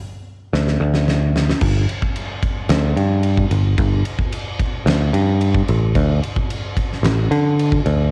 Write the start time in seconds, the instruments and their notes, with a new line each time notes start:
0.53 picked electric bass D2, snare
0.67 snare
0.80 picked electric bass D2
0.94 snare
1.08 snare
1.36 snare
1.49 snare
1.61 picked electric bass G1, kick, crash
1.89 ride
2.02 kick
2.16 ride
2.42 kick, ride
2.69 picked electric bass D2, snare, ride
2.97 picked electric bass G2, ride
3.23 ride
3.37 kick
3.51 picked electric bass G1, ride
3.78 picked electric bass G1, kick, ride
4.05 ride
4.19 kick
4.32 ride
4.59 kick, ride
4.86 picked electric bass D2, snare, ride
5.13 picked electric bass G2, ride
5.41 ride
5.54 kick
5.68 picked electric bass A1, ride
5.95 picked electric bass D2, kick, ride
6.24 ride
6.36 kick
6.50 ride
6.77 kick, ride
6.93 snare
7.03 picked electric bass A1, snare, ride
7.31 picked electric bass D3, ride
7.59 ride
7.72 kick
7.86 picked electric bass D2, ride